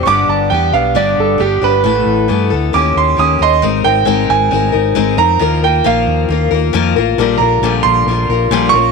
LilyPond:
<<
  \new Staff \with { instrumentName = "Grand piano" } { \time 4/4 \key g \lydian \tempo 4 = 135 <cis''' d'''>8 a''8 g''8 f''8 d''8 a'8 g'8 b'8~ | b'4. r8 d'''8 c'''8 ees'''8 <ees'' c'''>8 | \key aes \lydian r8 g''4 aes''2 bes''8~ | bes''8 g''8 f''4. r4. |
r8 bes''4 c'''2 des'''8 | }
  \new Staff \with { instrumentName = "Steel-string acoustic guitar" } { \time 4/4 \key g \lydian <g, d g b d' g'>4 <g b d' g'>8 <g b d' g'>8 <g, d g b d' g'>4 <g b d' g'>8 <g b d' g'>8 | <a, e a b a'>4 <e a b a'>8 <a b a'>8 <ees bes des' g'>4 <ees bes des' g'>8 <bes des' g'>8 | \key aes \lydian <aes c' ees' bes'>8 <c' ees' bes'>8 <aes c' ees' bes'>4 <aes c' ees' bes'>8 <c' ees' bes'>8 <aes c' ees' bes'>8 <c' ees' bes'>8 | <ees f bes f' bes'>8 <bes f' bes'>8 <ees f bes f' bes'>4 <f bes f' bes'>8 <bes f' bes'>8 <ees f bes f' bes'>8 <bes f' bes'>8 |
<bes, d f g f' bes'>8 <d g f' bes'>8 <bes, d f g f' bes'>4 <d g f' bes'>8 <d g f' bes'>8 <bes, d f g f' bes'>8 <bes des' f' bes'>8 | }
  \new Staff \with { instrumentName = "Fingered electric bass" } { \clef bass \time 4/4 \key g \lydian g,,8 g,,8 e,8 b,,8 g,,8 g,,8 g,,8 g,,8 | a,,8 a,,8 g,8 d,8 ees,8 ees,8 ees,8 ees,8 | \key aes \lydian aes,,8 aes,,8 aes,,8 aes,,8 aes,,8 aes,,8 aes,,8 f,8 | ees,4 bes,,8 ees,8 ees,8 ees,8 f,8 a,,8 |
bes,,8 bes,,8 bes,,8 bes,,8 bes,,8 bes,,8 bes,,8 bes,,8 | }
>>